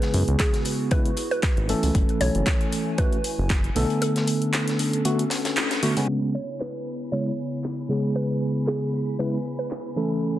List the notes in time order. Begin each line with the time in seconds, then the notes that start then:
Already playing: C#3 G#3 B3 E4 F#4 G#4 B4
0.02 snare, closed hi-hat
0.14 F#2, closed hi-hat, open hi-hat
0.28 C#2, closed hi-hat
0.40 G#4, kick, snare, clap, closed hi-hat
0.53 snare, closed hi-hat
0.65 closed hi-hat, open hi-hat
0.91 C#3 G#3 B3 E4 B4, kick, closed hi-hat
1.05 closed hi-hat
1.17 closed hi-hat, open hi-hat
1.31 B4, closed hi-hat
1.43 kick, snare, clap, closed hi-hat
1.57 G#1, closed hi-hat
1.68 E3 A3 C#4 A4, closed hi-hat, open hi-hat
1.83 C#2, closed hi-hat, open hi-hat
1.95 F#1 A3 G#5, kick, closed hi-hat
2.09 closed hi-hat
2.21 B1 C#5, closed hi-hat, open hi-hat
2.35 F#1, closed hi-hat
2.46 kick, snare, clap, closed hi-hat
2.61 closed hi-hat
2.72 closed hi-hat, open hi-hat
2.98 E3 A3 C#4 F#4 B4, kick, closed hi-hat
3.12 closed hi-hat
3.24 closed hi-hat, open hi-hat
3.38 F#1
3.50 kick, snare, clap, closed hi-hat
3.64 closed hi-hat
3.75 B1 D3 A3 B3 A4, closed hi-hat, open hi-hat
3.90 closed hi-hat
4.02 C#4 D4 A4, closed hi-hat
4.16 snare, closed hi-hat
4.27 closed hi-hat, open hi-hat
4.42 closed hi-hat
4.53 snare, clap, closed hi-hat
4.68 snare, closed hi-hat
4.79 closed hi-hat, open hi-hat
4.93 closed hi-hat
5.05 D3 A3 B3 F#4, closed hi-hat
5.19 closed hi-hat
5.30 snare, closed hi-hat, open hi-hat
5.45 snare, closed hi-hat
5.57 snare, clap, closed hi-hat
5.71 snare, closed hi-hat
5.83 D3 A3 B3 F#4, closed hi-hat, open hi-hat
5.96 C#3 G#3 B3 C#4, closed hi-hat, open hi-hat
6.08 C#3 B3 E4 G#5 B5
6.35 C#5
6.60 B4, clap
7.12 C#3 G#3 B3 E4 C#5
7.64 clap
7.89 C#3 G#3 B3 G#4
8.15 B4
8.67 G#4, clap
9.19 C#3 G#3 B3 E4 B4
9.59 B4
9.71 clap
9.96 E3 A3 C#4 A4
10.22 F#2 A3 E4